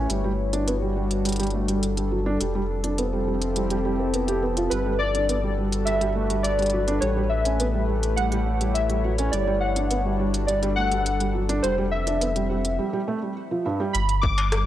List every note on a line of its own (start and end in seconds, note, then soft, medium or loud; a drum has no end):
0.00 0.99 E4 medium
0.00 3.20 B4 medium
0.00 1.02 C#5 medium
0.10 2.38 G1 medium
0.10 0.20 G3 medium
0.10 2.41 G3 medium
0.10 closed hi-hat medium
0.24 0.30 G3 medium
0.29 2.41 F#4 medium
0.33 3.33 D4 medium
0.53 0.67 D4 medium
0.53 closed hi-hat soft
0.67 0.73 B3 medium
0.67 closed hi-hat medium
0.82 0.92 G3 medium
0.96 1.02 G3 medium
0.96 7.95 A4 medium
1.11 closed hi-hat soft
1.25 1.35 G3 medium
1.25 closed hi-hat medium
1.29 closed hi-hat soft
1.32 closed hi-hat soft
1.36 1.46 G3 medium
1.36 closed hi-hat soft
1.40 closed hi-hat soft
1.43 closed hi-hat soft
1.47 closed hi-hat soft
1.50 1.64 A3 medium
1.50 closed hi-hat soft
1.68 1.82 G3 medium
1.68 closed hi-hat soft
1.83 closed hi-hat medium
1.97 2.07 G3 medium
1.97 closed hi-hat soft
2.12 2.18 F#3 medium
2.26 2.36 D4 medium
2.41 4.69 F1 medium
2.41 4.71 F3 medium
2.41 2.50 G3 medium
2.41 closed hi-hat medium
2.55 2.61 G3 medium
2.60 4.71 C4 medium
2.69 4.71 G4 medium
2.80 5.64 E4 medium
2.84 2.98 D4 medium
2.84 closed hi-hat soft
2.98 3.04 B3 medium
2.98 closed hi-hat medium
3.13 3.23 G3 medium
3.27 3.33 G3 medium
3.42 closed hi-hat soft
3.56 3.66 G3 medium
3.56 closed hi-hat medium
3.70 3.76 G3 medium
3.70 closed hi-hat soft
3.85 3.95 G3 medium
3.99 4.13 C4 medium
4.14 4.27 B3 medium
4.14 closed hi-hat medium
4.28 4.42 G4 medium
4.28 closed hi-hat soft
4.43 4.52 B3 medium
4.57 4.71 F3 medium
4.57 closed hi-hat soft
4.70 6.99 G1 medium
4.70 4.81 G3 medium
4.70 7.02 G3 medium
4.70 5.00 B4 medium
4.70 closed hi-hat medium
4.86 4.92 G3 medium
4.86 7.02 D4 medium
4.99 7.02 F#4 medium
4.99 5.53 D5 loud
5.15 5.28 D4 medium
5.15 closed hi-hat soft
5.29 5.35 B3 medium
5.29 12.56 B4 medium
5.29 closed hi-hat medium
5.43 5.53 G3 medium
5.58 5.64 G3 medium
5.72 closed hi-hat soft
5.85 5.97 G3 medium
5.85 6.45 E5 loud
5.85 closed hi-hat medium
6.01 6.07 G3 medium
6.01 closed hi-hat soft
6.15 6.25 A3 medium
6.30 6.44 G3 medium
6.30 closed hi-hat soft
6.43 6.84 D5 medium
6.43 closed hi-hat medium
6.59 6.69 G3 medium
6.59 closed hi-hat soft
6.62 closed hi-hat soft
6.66 closed hi-hat soft
6.70 6.79 F#3 medium
6.70 closed hi-hat soft
6.88 6.98 D4 medium
6.88 closed hi-hat soft
7.00 9.30 A1 medium
7.00 7.12 G3 medium
7.00 9.33 A3 medium
7.00 7.31 C#5 medium
7.00 closed hi-hat medium
7.16 7.22 G3 medium
7.26 9.33 G4 medium
7.26 7.84 E5 medium
7.32 10.25 E4 medium
7.45 7.59 C#4 medium
7.45 closed hi-hat soft
7.60 7.66 B3 medium
7.60 closed hi-hat medium
7.74 7.84 G3 medium
7.89 7.95 G3 medium
8.03 10.25 C#5 medium
8.03 closed hi-hat soft
8.16 8.27 G3 medium
8.16 8.76 F#5 loud
8.16 closed hi-hat medium
8.32 8.38 G3 medium
8.32 closed hi-hat soft
8.46 8.56 A3 medium
8.61 8.74 G3 medium
8.61 closed hi-hat soft
8.74 9.15 E5 medium
8.74 closed hi-hat medium
8.90 9.00 G3 medium
8.90 closed hi-hat soft
9.04 9.10 F#3 medium
9.18 9.28 C#4 medium
9.18 closed hi-hat soft
9.31 11.61 G1 medium
9.31 9.43 G3 medium
9.31 11.64 G3 medium
9.31 9.62 D5 medium
9.31 closed hi-hat medium
9.41 12.56 D4 medium
9.47 9.53 G3 medium
9.60 10.15 F#5 medium
9.72 9.90 D4 medium
9.72 11.64 F#4 medium
9.72 closed hi-hat soft
9.91 9.97 B3 medium
9.91 closed hi-hat medium
10.05 10.15 G3 medium
10.19 10.25 G3 medium
10.19 12.79 A4 medium
10.34 closed hi-hat soft
10.47 10.58 G3 medium
10.47 10.74 D5 medium
10.47 closed hi-hat medium
10.63 10.69 G3 medium
10.63 closed hi-hat soft
10.76 10.87 A3 medium
10.76 11.30 F#5 loud
10.92 11.05 G3 medium
10.92 closed hi-hat soft
11.06 closed hi-hat medium
11.20 11.30 G3 medium
11.20 closed hi-hat soft
11.35 11.41 F#3 medium
11.49 11.59 D4 medium
11.49 closed hi-hat soft
11.62 12.79 F1 medium
11.62 12.79 F3 medium
11.62 11.73 G3 medium
11.62 11.76 C5 medium
11.62 closed hi-hat medium
11.78 11.84 G3 medium
11.78 12.79 C4 medium
11.91 12.81 E5 loud
12.00 12.79 G4 medium
12.07 12.21 D4 medium
12.07 closed hi-hat soft
12.21 12.27 B3 medium
12.21 closed hi-hat medium
12.36 12.46 G3 medium
12.36 closed hi-hat soft
12.50 12.56 G3 medium
12.65 closed hi-hat medium
12.79 12.89 G3 medium
12.93 12.99 G3 medium
13.08 13.18 A3 medium
13.22 13.32 G3 medium
13.51 13.65 F3 medium
13.66 13.79 G2 medium
13.80 13.94 G3 medium
13.93 14.66 G1 medium
13.93 14.66 G3 medium
13.93 14.23 B5 loud
13.93 closed hi-hat medium
14.09 closed hi-hat medium
14.22 14.66 D4 medium
14.22 14.66 D6 loud
14.22 kick loud
14.31 14.66 F#4 medium
14.38 closed hi-hat soft
14.38 struck metal medium
14.52 cross-stick loud
14.52 closed hi-hat medium